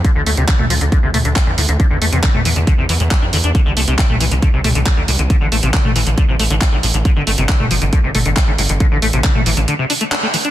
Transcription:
<<
  \new Staff \with { instrumentName = "Acid bass" } { \clef bass \time 4/4 \key g \dorian \tempo 4 = 137 d16 d16 a16 c16 d16 a16 f16 d16 d16 c16 a16 d16 d16 d16 a,16 d16 | d16 d16 a16 c16 d16 a16 e16 d16 d16 c16 e16 a,16 g16 d'16 d16 d'16 | d16 d16 a16 c16 d16 a16 e16 d16 d16 c16 a16 d16 d16 d16 a,16 d16 | d16 d16 a16 c16 d16 a16 e16 d16 d16 c16 a16 d16 d16 d16 a,16 d16 |
d16 d16 a16 c16 d16 a16 f16 d16 d16 c16 a16 d16 d16 d16 a,16 d16 | d16 d16 a16 c16 d16 a16 e16 d16 d16 c16 d'16 a16 d'16 a16 e16 d'16 | }
  \new Staff \with { instrumentName = "Analog synth bass" } { \clef bass \time 4/4 \key g \dorian r16 d,16 d,16 d,16 r16 d,16 d,16 d,16 r16 d,16 d,16 d,16 r16 e,16 d,16 d,16 | r16 e,16 e,16 e,16 r16 e,16 e,16 e,16 r16 e,16 e,16 e,16 r16 f,16 e,16 e,16 | r16 c,16 c,16 c,16 r16 c,16 c,16 c,16 r16 c,16 c,16 c,16 r16 d,16 c,16 c,16 | r16 a,,16 a,,16 a,,16 r16 a,,16 a,,16 a,,16 r16 a,,16 a,,16 a,,16 r16 bes,,16 a,,16 a,,16 |
r16 g,,16 g,,16 g,,16 r16 g,,16 g,,16 g,,16 r16 g,,16 g,,16 g,,16 r16 a,,16 g,,16 g,,16 | r16 a,,16 a,,16 a,,16 r16 a,,16 a,,16 a,,16 r2 | }
  \new DrumStaff \with { instrumentName = "Drums" } \drummode { \time 4/4 <hh bd>8 hho16 hh16 <hc hh bd>16 toml16 hho16 hh16 <hh bd>8 <hho toml>16 hh16 <hc hh bd>8 hho16 hh16 | <hh bd>8 hho16 hh16 <hc hh bd>16 toml16 hho16 hh16 <hh bd>8 hho16 hh16 <hc hh bd>8 hho16 hh16 | <hh bd>8 hho16 hh16 <hc hh bd>16 toml16 hho16 hh16 <hh bd>8 <hho toml>16 hh16 <hc hh bd>8 hho16 hh16 | <hh bd>8 hho16 hh16 <hc hh bd>16 toml16 hho16 hh16 <hh bd>8 hho16 hh16 <hc hh bd>8 hho16 hh16 |
<hh bd>8 hho16 hh16 <hc hh bd>16 toml16 hho16 hh16 <hh bd>8 <hho toml>16 hh16 <hc hh bd>8 hho16 hh16 | <hh bd>8 hho16 hh16 <hc hh bd>16 toml16 hho16 hh16 hh8 hho16 hh16 <hc hh>8 hho16 hh16 | }
>>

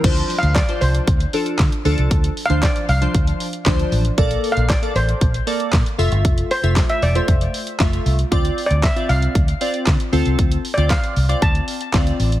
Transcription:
<<
  \new Staff \with { instrumentName = "Steel pan" } { \time 4/4 \key d \minor \tempo 4 = 116 \tuplet 3/2 { r4 f''8 } d''8 c''2 r8 | \tuplet 3/2 { r4 f''8 } d''8 f''2 r8 | \tuplet 3/2 { r4 f''8 } d''8 c''2 r8 | r8 c''8. e''16 d''16 c''4.~ c''16 r8 |
\tuplet 3/2 { r4 d''8 } e''8 f''4. r4 | \tuplet 3/2 { r4 d''8 } f''4 a''4. r8 | }
  \new Staff \with { instrumentName = "Synth keys" } { \time 4/4 \key d \minor <f d' c''>8. r8 <f d' c''>8. r8 <f d' a'>8. r16 <f d' a'>8~ | <f d' a'>16 r8 <f d' c''>8. r16 <f d' c''>8. r8 <f d' c''>8. r16 | <bes a' d''>8. r8 <bes a' d''>8. r8 <bes a' d''>8. r16 <a f' e''>8~ | <a f' e''>8 r16 <a f' e''>8. r16 <a f' e''>8. r8 <a f' e''>8. r16 |
<c' f' d''>8. r8 <c' f' d''>8. r8 <c' f' d''>8. r16 <c' f' a'>8~ | <c' f' a'>16 r8 <c' f' d''>8. r16 <c' f' d''>8. r8 <c' f' d''>8. r16 | }
  \new Staff \with { instrumentName = "Fingered electric bass" } { \clef bass \time 4/4 \key d \minor d,8 r16 d,8 r16 c,8 d,8 r8 d16 r16 d,16 c,16 | d,8 r16 d,8 r16 c,8 d,8 r8 d,8 a,,8 | bes,,8 r16 bes,,8 r16 a,,8 bes,,8 r8 bes,16 r16 f,,16 g,,16 | f,,8 r16 f,,8 r16 e,,8 f,,8 r8 f,,8 c,8 |
d,8 r16 d,8 r16 c,8 d,8 r8 d16 r16 d,16 c,16 | d,8 r16 d,8 r16 c,8 d,8 r8 d,8 a,,8 | }
  \new DrumStaff \with { instrumentName = "Drums" } \drummode { \time 4/4 <cymc hh bd>16 hh16 hho16 hh16 <hc hh bd sn>16 hh16 hho16 hh16 <hh bd>16 hh16 hho16 hh16 <hc hh bd sn>16 hh16 hho16 hh16 | <hh bd>16 hh16 hho16 hh16 <hc hh bd sn>16 hh16 hho16 hh16 <hh bd>16 hh16 hho16 hh16 <hc hh bd sn>16 hh16 hho16 hh16 | <hh bd>16 hh16 hho16 hh16 <hc hh bd sn>16 hh16 hho16 hh16 <hh bd>16 hh16 hho16 hh16 <hc hh bd sn>16 hh16 hho16 hh16 | <hh bd>16 hh16 hho16 hh16 <hc hh bd sn>16 hh16 hho16 hh16 <hh bd>16 hh16 hho16 hh16 <hc hh bd sn>16 hh16 hho16 hh16 |
<hh bd>16 hh16 hho16 hh16 <hc hh bd sn>16 hh16 hho16 hh16 <hh bd>16 hh16 hho16 hh16 <hc hh bd sn>16 hh16 hho16 hh16 | <hh bd>16 hh16 hho16 hh16 <hc hh bd sn>16 hh16 hho16 hh16 <hh bd>16 hh16 hho16 hh16 <hc hh bd sn>16 hh16 hho16 hh16 | }
>>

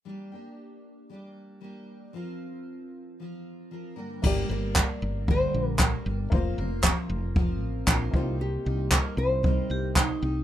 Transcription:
<<
  \new Staff \with { instrumentName = "Nylon-string guitar" } { \time 4/4 \key g \minor \tempo 4 = 115 r1 | r1 | g'8 bes'4. c''4 bes'8. r16 | r2. r8 f'8 |
g'4 bes'8 c''2 r8 | }
  \new Staff \with { instrumentName = "Upright piano" } { \time 4/4 \key g \minor r1 | r1 | <bes g' d''>1 | <bes f' c''>2.~ <bes f' c''>8 <bes ees' c''>8~ |
<bes ees' c''>2.~ <bes ees' c''>8 r8 | }
  \new Staff \with { instrumentName = "Vibraphone" } { \time 4/4 \key g \minor r1 | r1 | r1 | r1 |
r2 r8 g'8 ees'4 | }
  \new Staff \with { instrumentName = "Steel-string acoustic guitar" } { \time 4/4 \key g \minor <g bes d' g'>8 <bes d' g'>4. <g bes d' g'>4 <g bes d' g'>4 | <f c' f' bes'>2 <f c' f' bes'>4 <f c' f' bes'>8 <g, d g bes d' bes'>8 | <g, d g bes d' bes'>8 <g bes d' bes'>8 <g bes d' bes'>4 <g, d g bes d' bes'>4 <g bes d' bes'>8 <g bes d' bes'>8 | <f c' f' bes'>8 <c' f' bes'>8 <f c' f' bes'>4 <f c' f' bes'>4 <f c' f' bes'>8 <c g bes ees' g'>8~ |
<c g bes ees' g'>8 <bes ees' g'>8 <g bes ees' g'>4 <c g bes ees' g'>4 <g bes ees' g'>8 <bes ees' g'>8 | }
  \new Staff \with { instrumentName = "Fretless electric bass" } { \clef bass \time 4/4 \key g \minor r1 | r1 | g,,8 g,,8. r16 g,,4 bes,,4 g,,8 | f,,8 f,,8. r16 f,,4 a,,8 bes,,8 c,8~ |
c,8 c,8. r16 c,4 c,4 c,8 | }
  \new DrumStaff \with { instrumentName = "Drums" } \drummode { \time 4/4 r4 r4 r4 r4 | r4 r4 r4 r4 | <cymc bd>4 <hc bd>4 bd4 <hc bd>4 | bd4 <hc bd>4 bd4 <hc bd>8 bd8 |
r4 <hc bd>4 bd4 <hc bd>4 | }
>>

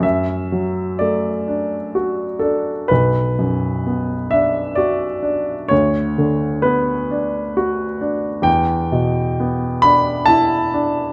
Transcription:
\new Staff \with { instrumentName = "Grand piano" } { \time 3/4 \key b \minor \tempo 4 = 64 << { e''4 d''4 r8 a'8 | b'4. e''8 d''4 | cis''4 b'4 r4 | g''4. b''8 a''4 | } \\ { fis,8 fis8 a8 d'8 fis'8 d'8 | b,,8 fis,8 b8 d'8 fis'8 d'8 | d,8 d8 b8 d'8 fis'8 d'8 | e,8 b,8 b8 d'8 e'8 d'8 | } >> }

